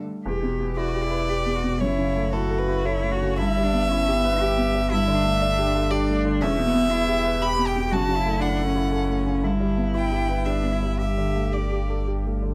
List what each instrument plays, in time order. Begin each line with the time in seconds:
Already playing: grand piano G2 G3 D4
0.00 grand piano A3
0.25 sub bass E1, grand piano E2, cello G4
0.43 grand piano B2
0.60 grand piano B3
0.76 grand piano E4, cello F#4, violin D5
0.94 grand piano G4
1.04 cello E4
1.11 grand piano B4
1.29 grand piano G4, cello G4
1.46 grand piano B3
1.55 cello F#4
1.63 grand piano B2
1.81 sub bass F#1, grand piano F#2, cello E4, violin C#5
1.99 grand piano C#3
2.16 grand piano A3
2.33 grand piano E4, cello F#4, violin A4
2.50 grand piano A4
2.59 violin B4
2.68 grand piano E4
2.85 cello E4, grand piano A4, violin C#5
3.03 grand piano A3
3.11 cello F#4
3.21 grand piano C#3
3.38 sub bass G1, grand piano G2, cello E4, violin E5
3.57 grand piano G3
3.63 cello D4
3.74 grand piano B3
3.89 cello C#4, grand piano E4
4.08 grand piano G4
4.14 cello B3
4.25 grand piano B4
4.40 cello G4, grand piano G4
4.58 grand piano B3
4.74 grand piano G3
4.91 grand piano G2, cello E4, violin E5
5.08 grand piano D3
5.15 cello D4
5.24 grand piano A3
5.41 grand piano D4
5.59 grand piano G4
5.75 grand piano A4
5.90 cello D4, grand piano G4, violin D5
6.08 grand piano A3
6.25 grand piano D3
6.41 sub bass E1, grand piano E2, cello C#4, violin E5
6.58 grand piano B2
6.65 cello B3
6.74 grand piano B3
6.91 cello E4, grand piano E4
7.08 grand piano G4
7.25 grand piano B4
7.41 cello G4, grand piano G4, violin B5
7.59 grand piano B3
7.67 violin G5
7.76 grand piano B2
7.91 sub bass F#1, grand piano F#2, cello F#4, violin A5
8.09 grand piano C#3
8.15 cello E4
8.25 grand piano A3
8.40 cello D4, grand piano E4, violin F#5
8.59 grand piano A4
8.66 cello C#4
8.76 grand piano E4
8.92 grand piano A4
9.09 grand piano A3
9.26 grand piano C#3
9.43 sub bass G1, grand piano G2, cello E4
9.60 grand piano G3
9.77 grand piano B3
9.94 grand piano E4, violin G5
10.12 grand piano G4
10.29 grand piano B4
10.46 cello D4, grand piano G4, violin E5
10.63 grand piano B3
10.72 cello E4
10.83 grand piano G3
10.99 grand piano G2, cello G4, violin E5
11.18 grand piano D3
11.35 grand piano A3
11.53 grand piano D4, violin D5
11.72 grand piano G4
11.90 grand piano A4
12.07 grand piano G4
12.25 grand piano A3
12.42 grand piano D3